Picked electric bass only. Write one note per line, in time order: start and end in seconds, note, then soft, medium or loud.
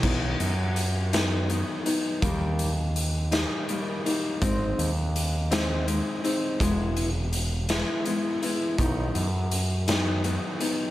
0.03 0.34 B1 medium
0.40 1.62 F#2 medium
2.22 3.44 D#2 medium
4.42 4.72 G#1 medium
4.78 6.00 D#2 medium
6.60 7.82 E1 medium
8.78 9.09 B1 medium
9.15 10.37 F#2 medium